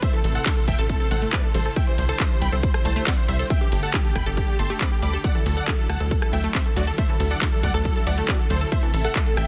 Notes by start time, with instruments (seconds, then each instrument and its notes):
0.02 analog synth pad C3 A3 E4 C5, synth arpeggio sound A3, supersaw synth C5 E5, kick, closed hi-hat, ride
0.13 synth arpeggio sound E3, supersaw synth A4, closed hi-hat
0.24 analog synth bass A1, analog synth pad C3 A3 E4 C5, supersaw synth A4, open hi-hat, ride
0.35 supersaw synth A4 F#5, synth arpeggio sound A4, closed hi-hat
0.46 analog synth pad C3 A3 E4 C5, synth arpeggio sound D4, supersaw synth A4, kick, clap, closed hi-hat, ride
0.57 supersaw synth A4, closed hi-hat
0.68 analog synth bass A1, supersaw synth E5 G5, kick, open hi-hat, ride
0.78 analog synth bass A1, analog synth pad C3 A3 E4 C5, supersaw synth A4, synth arpeggio sound A4, closed hi-hat
0.89 supersaw synth A4, kick, closed hi-hat, ride
1.00 analog synth pad C3 A3 E4 C5, supersaw synth A4, closed hi-hat
1.11 analog synth bass A1, synth arpeggio sound A3, supersaw synth A4 F#5, open hi-hat, ride
1.22 analog synth pad C3 A3 E4 C5, synth arpeggio sound A3, supersaw synth A4, closed hi-hat
1.33 synth arpeggio sound C4, supersaw synth B4 D5, kick, clap, closed hi-hat, ride
1.44 supersaw synth A4, closed hi-hat
1.54 analog synth bass A1, analog synth pad C3 A3 E4 C5, synth arpeggio sound G3, supersaw synth A4 C5, open hi-hat, ride
1.65 synth arpeggio sound A4, supersaw synth A4, closed hi-hat
1.76 analog synth pad D3 G3 E4 C5, synth arpeggio sound A3, supersaw synth E5 G5, kick, closed hi-hat, ride
1.87 synth arpeggio sound E3, supersaw synth C5, closed hi-hat
1.98 analog synth bass C2, analog synth pad D3 G3 E4 C5, supersaw synth C5, open hi-hat, ride
2.09 synth arpeggio sound A4, supersaw synth C5 A5, closed hi-hat
2.20 analog synth pad D3 G3 E4 C5, synth arpeggio sound D4, supersaw synth C5, kick, clap, closed hi-hat, ride
2.31 supersaw synth C5, closed hi-hat
2.41 analog synth bass C2, supersaw synth G5 B5, open hi-hat, ride
2.52 analog synth bass C2, analog synth pad D3 G3 E4 C5, synth arpeggio sound A4, supersaw synth C5, closed hi-hat
2.63 supersaw synth C5, kick, closed hi-hat, ride
2.74 analog synth pad D3 G3 E4 C5, supersaw synth C5, cross-stick, closed hi-hat
2.85 analog synth bass C2, synth arpeggio sound A3, supersaw synth C5 A5, open hi-hat, ride
2.96 analog synth pad D3 G3 E4 C5, synth arpeggio sound A3, supersaw synth C5, closed hi-hat
3.06 synth arpeggio sound C4, supersaw synth D5 F#5, kick, clap, closed hi-hat, ride
3.18 supersaw synth C5, closed hi-hat
3.28 analog synth bass C2, analog synth pad D3 G3 E4 C5, synth arpeggio sound G3, supersaw synth C5 E5, open hi-hat, ride
3.39 synth arpeggio sound A4, supersaw synth C5, closed hi-hat
3.50 analog synth pad D3 A3 G4 A4, synth arpeggio sound A3, supersaw synth E5 G5, kick, closed hi-hat, ride
3.61 synth arpeggio sound E3, supersaw synth G4, closed hi-hat
3.72 analog synth bass G1, analog synth pad D3 A3 G4 A4, supersaw synth G4, open hi-hat, ride
3.83 synth arpeggio sound A4, supersaw synth F#5 A5, closed hi-hat
3.93 analog synth pad D3 A3 G4 A4, synth arpeggio sound D4, supersaw synth G4, kick, clap, closed hi-hat, ride
4.05 supersaw synth G4, closed hi-hat
4.15 analog synth bass G1, supersaw synth G5 B5, kick, cross-stick, open hi-hat, ride
4.26 analog synth bass G1, analog synth pad D3 A3 G4 A4, supersaw synth G4, synth arpeggio sound A4, closed hi-hat
4.37 supersaw synth G4, kick, closed hi-hat, ride
4.48 analog synth pad D3 A3 G4 A4, supersaw synth G4, closed hi-hat
4.59 analog synth bass G1, synth arpeggio sound A3, supersaw synth A5 C6, open hi-hat, ride
4.70 analog synth pad D3 A3 G4 A4, synth arpeggio sound A3, supersaw synth G4, closed hi-hat
4.81 synth arpeggio sound C4, supersaw synth B5 D6, kick, clap, closed hi-hat, ride
4.92 supersaw synth G4, closed hi-hat
5.02 analog synth bass D2, analog synth pad D3 A3 G4 A4, synth arpeggio sound G3, supersaw synth B5 D6, open hi-hat, ride
5.13 supersaw synth G4, synth arpeggio sound A4, closed hi-hat
5.24 analog synth pad D3 F#3 E4 A4, synth arpeggio sound A3, supersaw synth D5 F#5, kick, closed hi-hat, ride
5.35 synth arpeggio sound E3, supersaw synth A4, closed hi-hat
5.46 analog synth bass D2, analog synth pad D3 F#3 E4 A4, supersaw synth A4, open hi-hat, ride
5.57 synth arpeggio sound A4, supersaw synth D5 F#5, closed hi-hat
5.68 analog synth pad D3 F#3 E4 A4, synth arpeggio sound D4, supersaw synth A4, kick, clap, closed hi-hat, ride
5.79 supersaw synth A4, closed hi-hat
5.89 analog synth bass D2, supersaw synth F#5 A5, cross-stick, open hi-hat, ride
6.00 analog synth bass D2, analog synth pad D3 F#3 E4 A4, synth arpeggio sound A4, supersaw synth A4, closed hi-hat
6.11 supersaw synth A4, kick, closed hi-hat, ride
6.22 analog synth pad D3 F#3 E4 A4, supersaw synth A4, cross-stick, closed hi-hat
6.33 analog synth bass D2, synth arpeggio sound A3, supersaw synth E5 G5, open hi-hat, ride
6.44 analog synth pad D3 F#3 E4 A4, synth arpeggio sound A3, supersaw synth A4, closed hi-hat
6.55 synth arpeggio sound C4, supersaw synth C5 E5, kick, clap, closed hi-hat, ride
6.66 supersaw synth A4, closed hi-hat
6.76 analog synth bass D2, analog synth pad D3 F#3 E4 A4, synth arpeggio sound F#3, supersaw synth F#4 D5, open hi-hat, ride
6.87 synth arpeggio sound A4, supersaw synth A4, closed hi-hat
6.98 analog synth pad D3 F#3 E4 A4, synth arpeggio sound A3, supersaw synth C5 E5, kick, closed hi-hat, ride
7.09 synth arpeggio sound E3, supersaw synth A4, closed hi-hat
7.20 analog synth bass D2, analog synth pad D3 F#3 E4 A4, supersaw synth A4, open hi-hat, ride
7.31 synth arpeggio sound A4, supersaw synth D5 F#5, closed hi-hat
7.41 analog synth pad D3 F#3 E4 A4, synth arpeggio sound D4, supersaw synth A4, kick, clap, closed hi-hat, ride
7.52 supersaw synth A4, closed hi-hat
7.63 analog synth bass D2, supersaw synth D5 F#5, kick, open hi-hat, ride
7.74 analog synth bass D2, analog synth pad D3 F#3 E4 A4, synth arpeggio sound A4, supersaw synth A4, closed hi-hat
7.85 supersaw synth A4, kick, closed hi-hat, ride
7.96 analog synth pad D3 F#3 E4 A4, supersaw synth A4, closed hi-hat
8.07 analog synth bass D2, synth arpeggio sound A3, supersaw synth D5 F#5, open hi-hat, ride
8.17 analog synth pad D3 F#3 E4 A4, synth arpeggio sound A3, supersaw synth A4, closed hi-hat
8.28 synth arpeggio sound C4, supersaw synth F#4 D5, kick, clap, closed hi-hat, ride
8.39 supersaw synth A4, closed hi-hat
8.50 analog synth bass D2, analog synth pad D3 F#3 E4 A4, synth arpeggio sound F#3, supersaw synth A4 C5, open hi-hat, ride
8.61 supersaw synth A4, synth arpeggio sound A4, closed hi-hat
8.72 analog synth pad C3 A3 E4 A4, synth arpeggio sound A3, supersaw synth C5 E5, kick, closed hi-hat, ride
8.83 synth arpeggio sound E3, supersaw synth A4, closed hi-hat
8.94 analog synth bass A1, analog synth pad C3 A3 E4 A4, supersaw synth A4, open hi-hat, ride
9.04 supersaw synth A4 F#5, synth arpeggio sound A4, closed hi-hat
9.15 analog synth pad C3 A3 E4 A4, synth arpeggio sound D4, kick, clap, closed hi-hat, ride
9.26 supersaw synth A4, closed hi-hat
9.37 analog synth bass A1, supersaw synth E5 G5, cross-stick, open hi-hat, ride